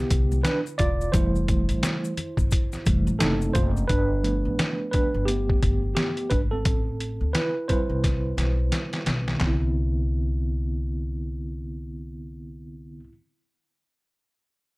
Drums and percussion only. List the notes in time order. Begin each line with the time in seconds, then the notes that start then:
0.10 kick, closed hi-hat, maracas
0.32 high conga, maracas
0.45 snare, closed hi-hat, maracas
0.67 maracas
0.79 kick, closed hi-hat, low conga, maracas
1.01 maracas
1.14 kick, closed hi-hat, maracas
1.35 maracas
1.48 kick, closed hi-hat, high conga, low conga, maracas
1.69 closed hi-hat, maracas
1.83 snare, closed hi-hat, maracas
2.05 maracas
2.17 closed hi-hat, low conga, maracas
2.37 kick, maracas
2.51 kick, closed hi-hat, maracas
2.72 snare, maracas
2.86 kick, closed hi-hat, maracas
3.07 high conga, maracas
3.20 snare, closed hi-hat, maracas
3.42 maracas
3.55 kick, closed hi-hat, low conga, maracas
3.77 maracas
3.89 kick, closed hi-hat
4.24 closed hi-hat
4.59 snare, closed hi-hat
4.93 kick, closed hi-hat
5.28 closed hi-hat
5.50 kick
5.63 kick, closed hi-hat
5.97 snare, closed hi-hat
6.17 closed hi-hat
6.30 kick, closed hi-hat
6.65 kick, closed hi-hat
7.00 closed hi-hat
7.35 snare, closed hi-hat
7.69 kick, closed hi-hat
8.04 kick, snare, closed hi-hat
8.38 snare, closed hi-hat
8.72 snare, closed hi-hat
8.93 snare, closed hi-hat
9.06 snare, closed hi-hat
9.28 snare
9.41 kick, snare, clap